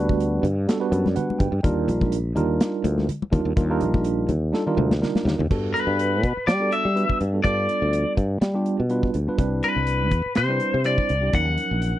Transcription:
Already playing: D2 G3 B3 D4 F#4 B4
0.09 kick, high conga
0.20 closed hi-hat
0.43 G2, closed hi-hat, low conga
0.67 G3 B3 D4 F#4 A4, snare, closed hi-hat
0.80 G3 B3 D4 F#4 B4
0.92 F#2 D5, closed hi-hat
1.06 snare, high conga
1.15 G3 B3 D4 F#4 B4 F#5, closed hi-hat, low conga
1.30 high conga
1.39 G2 G5, kick, closed hi-hat, low conga
1.52 G2
1.63 D#2 G3 D4 D#4 F4 A#4, kick, closed hi-hat, low conga
1.88 A#1, closed hi-hat
2.01 kick, high conga
2.12 closed hi-hat
2.35 D#2 G3 D4 D#4 F4 A#4, closed hi-hat, low conga
2.61 snare, closed hi-hat
2.84 D2, closed hi-hat, high conga
2.98 snare, high conga
3.09 closed hi-hat, low conga
3.22 high conga
3.31 D#2 G3 D4 D#4 F4 A#4, kick, closed hi-hat, low conga
3.45 D#2
3.56 D#2 G3 D4 D#4 F4 A#4, kick, closed hi-hat, low conga
3.69 G3 D4 D#4 F4 A#4
3.81 A#1, closed hi-hat
3.94 kick, high conga
4.04 closed hi-hat
4.29 D#2, closed hi-hat, high conga, low conga
4.52 G3 D4 D#4 F4 A4, snare
4.66 G3 D4 D#4 F4 A#4, high tom
4.77 D2, mid tom, high conga
4.91 snare, high conga
5.01 G3 D4 D#4 F4 A#4, snare, low conga
5.15 snare, high conga
5.25 D#2, snare, low conga
5.39 D#2, floor tom, low conga
5.50 G2 G3 B3 D4 F#4 A4, kick, crash
5.74 B4, closed hi-hat
5.87 G2
5.99 closed hi-hat
6.23 B2, kick, closed hi-hat
6.37 muted fretless electric bass stroke
6.47 G3 D5, snare, closed hi-hat
6.60 G3 B3 D4 F#4 A4
6.72 E5, closed hi-hat
6.85 G3
6.94 G3 B3 D4 F#4 B4, closed hi-hat
7.09 muted fretless electric bass stroke, kick
7.21 G2, closed hi-hat
7.33 G3 B3 D4 F#4 A4
7.43 G2 G3 B3 D4 F4 A4 D5, kick, closed hi-hat
7.69 closed hi-hat
7.82 D2
7.93 closed hi-hat
8.17 G2, kick, closed hi-hat
8.41 G3, snare, closed hi-hat
8.54 G3 B3 D4 F4 G4
8.66 closed hi-hat
8.80 B2
8.90 G3 B3 D4 F4 B4, closed hi-hat
9.03 kick
9.14 D2, closed hi-hat
9.27 G3 B3 D4 F4 B4, muted fretless electric bass stroke
9.37 C2 G3 C4 D4 E4 B4, kick, closed hi-hat
9.63 B4, closed hi-hat
9.76 C2
9.87 closed hi-hat
10.11 E2, kick, closed hi-hat
10.26 muted fretless electric bass stroke
10.35 C3 C5, snare, closed hi-hat
10.48 G3 C4 D4 E4 B4
10.60 closed hi-hat
10.74 C3
10.84 G3 C4 D4 E4 C5 D5, closed hi-hat
10.98 muted fretless electric bass stroke, kick
11.09 C2, closed hi-hat
11.21 G3 C4 D4 E4 G4
11.32 D#2 F3 F#3 C#4 D#4 A#4 F#5, kick, closed hi-hat
11.58 closed hi-hat
11.71 A#1
11.82 closed hi-hat

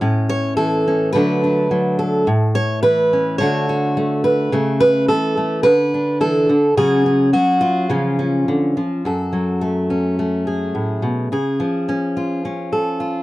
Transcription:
0.01 A2 C#4
0.29 C#5
0.57 E3 A4
0.88 C#4
1.13 D3 F#3 A3 B4
1.17 D4
1.44 D4
1.71 F#3
1.99 A4
2.27 A2
2.55 C#5
2.83 E3 B4
3.13 C#4
3.38 D3 A3 D4 C#5
3.42 F#4
3.69 F#4
3.97 A3
4.24 B4
4.52 C#3 A3
4.80 B4
5.08 E3 A4
5.37 A3
5.63 D3 B4
5.94 D4
6.21 E3 A4
6.49 D3
6.77 C#3 F#3 C#4 G#4
7.06 C#4
7.33 F#3 F#4
7.61 F4
7.90 C#3 F3 C#4
8.19 C#4
8.48 D3
8.77 F3
9.05 F#2 A4
9.33 F#3
9.61 A3
9.90 C#4
10.19 A3
10.47 G#4
10.75 A2
11.02 B2
11.32 C#3 G#4
11.60 F3
11.89 C#4
12.17 F4
12.45 C#4
12.73 A4
13.00 F4

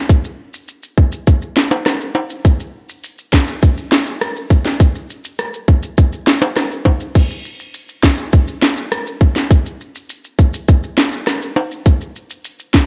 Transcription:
0.09 kick, maracas
0.25 maracas
0.54 maracas
0.68 maracas
0.83 maracas
0.98 kick
1.12 maracas
1.27 kick, maracas
1.42 maracas
1.56 snare, maracas
1.71 high timbale, maracas
1.86 cross-stick, snare, high timbale, maracas
2.01 maracas
2.15 high timbale, maracas
2.30 maracas
2.45 kick, closed hi-hat, maracas
2.60 maracas
2.89 maracas
3.04 closed hi-hat, maracas
3.18 maracas
3.33 kick, snare
3.48 maracas
3.62 kick, closed hi-hat, maracas
3.77 maracas
3.92 snare, maracas
4.07 maracas
4.21 cross-stick, closed hi-hat, maracas
4.36 maracas
4.50 kick, maracas
4.65 snare, maracas
4.80 kick, closed hi-hat, maracas
4.95 maracas
5.10 maracas
5.24 maracas
5.39 cross-stick, closed hi-hat, maracas
5.54 maracas
5.68 kick
5.83 maracas
5.98 kick, closed hi-hat, maracas
6.13 maracas
6.27 snare
6.42 high timbale, maracas
6.56 cross-stick, snare, closed hi-hat, high timbale, maracas
6.71 maracas
6.85 kick, high timbale
7.00 maracas
7.15 kick, closed hi-hat, crash, maracas
7.30 maracas
7.45 maracas
7.59 maracas
7.74 closed hi-hat, maracas
7.89 maracas
8.03 kick, snare, maracas
8.18 maracas
8.33 kick, closed hi-hat, maracas
8.48 maracas
8.62 snare, maracas
8.77 maracas
8.92 cross-stick, closed hi-hat, maracas
9.07 maracas
9.21 kick
9.36 snare, maracas
9.51 kick, closed hi-hat, maracas
9.66 maracas
9.81 maracas
9.95 maracas
10.09 closed hi-hat, maracas
10.24 maracas
10.39 kick, maracas
10.54 maracas
10.68 kick, closed hi-hat, maracas
10.83 maracas
10.98 snare, maracas
11.13 maracas
11.27 cross-stick, snare, closed hi-hat, maracas
11.42 maracas
11.56 high timbale
11.71 maracas
11.86 kick, closed hi-hat, maracas
12.01 maracas
12.16 maracas
12.30 maracas
12.44 closed hi-hat, maracas
12.59 maracas
12.74 kick, snare, maracas

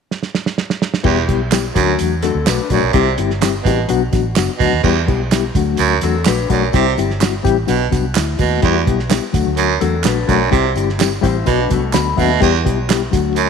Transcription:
0.11 snare
0.23 snare
0.35 snare
0.46 snare
0.58 snare
0.70 snare
0.82 snare
0.94 snare
1.04 E1 E2 G3 B3 E4 G4, kick, crash
1.27 B1 G3 B3 E4 G4, kick, closed hi-hat
1.51 G3 B3 E4 G4, snare, clap, closed hi-hat, tambourine
1.75 D2 F#2 F#3 A3 D4 F#4, kick, closed hi-hat, tambourine
1.99 E2, closed hi-hat, tambourine
2.22 F#3 A3 C4 D4 F#4 A4, snare, closed hi-hat, tambourine
2.35 D2
2.47 B1 F#3 A3 D4 F#4 B4, snare, clap, closed hi-hat, tambourine
2.70 A#1 F#2 F#3 A3 D4 F#4 D5, kick, closed hi-hat, tambourine
2.83 B1
2.93 C2 C3 G3 C4 E4 G4, kick, closed hi-hat
3.18 G1 G3 C4 E4 G4, closed hi-hat
3.30 snare
3.41 G3 C4 E4 G4, snare, clap, closed hi-hat, tambourine
3.64 A1 B2 G3 C4 E4 G4, kick, closed hi-hat, tambourine
3.89 B1 F#3 B3 D4 F#4, closed hi-hat, tambourine
4.12 A1 F#3 B3 D4 F#4, kick, snare, closed hi-hat, tambourine
4.36 F#1 F#3 B3 D4 F#4, snare, clap, closed hi-hat, tambourine
4.59 D2 B2 F#3 B3 D4 F#4, kick, open hi-hat, tambourine
4.73 D#2
4.83 E2 G3 B3 E4 G4, kick, crash, tambourine
5.07 B1 G3 B3 E4 G4, kick, closed hi-hat, tambourine
5.31 G3 B3 E4 G4, snare, clap, closed hi-hat, tambourine
5.55 D2 F#3 A3 D4 F#4, kick, closed hi-hat, tambourine
5.77 D2 F#2, closed hi-hat, tambourine
6.01 E2 F#3 A3 C4 D4 F#4 A4, snare, closed hi-hat, tambourine
6.25 A#1 F#3 A3 D4 F#4 B4, snare, clap, closed hi-hat, tambourine
6.49 B1 F#2 F#3 A3 D4 F#4 D5, kick, closed hi-hat, tambourine
6.73 C2 C3 G3 C4 E4 G4, kick, closed hi-hat, tambourine
6.97 G1 G3 C4 E4 G4, closed hi-hat, tambourine
7.10 snare
7.20 G3 C4 E4 F#4, snare, clap, closed hi-hat, tambourine
7.43 A1 G3 C4 E4 G4, kick, closed hi-hat, tambourine
7.67 B1 B2 F#3 B3 D4 F#4, closed hi-hat, tambourine
7.91 C2 F#3 B3 D4 F#4, kick, snare, closed hi-hat, tambourine
8.15 D2 E4, snare, clap, closed hi-hat, tambourine
8.39 D#2 B2 A3 F#4, kick, closed hi-hat, tambourine
8.61 E2 G3 B3 E4 G4, kick, closed hi-hat
8.86 B1 G3 B3 E4 G4, kick, closed hi-hat
8.99 snare
9.09 G3 B3 E4 G4, snare, clap, closed hi-hat, tambourine
9.33 D2 F#3 A3 D4 F#4, kick, closed hi-hat, tambourine
9.46 D2
9.57 F#2, closed hi-hat, tambourine
9.80 E2 F#3 A3 C4 D4 F#4 A4, closed hi-hat, tambourine
10.03 A#1 F#3 A3 D4 F#4 B4, snare, clap, closed hi-hat, tambourine
10.28 B1 F#2 F#3 A3 D4 F#4 D5, kick, closed hi-hat, tambourine
10.51 C2 C3 G3 C4 E4 G4, kick, closed hi-hat
10.75 G1 G3 C4 E4 G4, closed hi-hat, tambourine
10.89 snare
10.98 G3 C4 E4 G4, snare, clap, closed hi-hat, tambourine
11.21 A1 G3 C4 E4 G4 C5, kick, closed hi-hat, tambourine
11.45 B1 B2 F#3 B3 D4 F#4 B4, kick, closed hi-hat, tambourine
11.69 C2 F#3 A3 B3 D4 F#4, kick, closed hi-hat, tambourine
11.93 D2 F#3 B3 D4 F#4 B5, snare, clap, closed hi-hat, tambourine
12.16 D#2 B2 F#3 B3 D4 F#4 E5, kick, open hi-hat, tambourine
12.40 E2 G3 B3 E4 G4, kick, closed hi-hat
12.64 B1 G3 B3 E4 G4, kick, closed hi-hat
12.88 G3 B3 E4 G4, snare, clap, closed hi-hat, tambourine
13.11 D2 F#3 A3 D4 F#4, kick, closed hi-hat, tambourine
13.36 F#2, closed hi-hat, tambourine

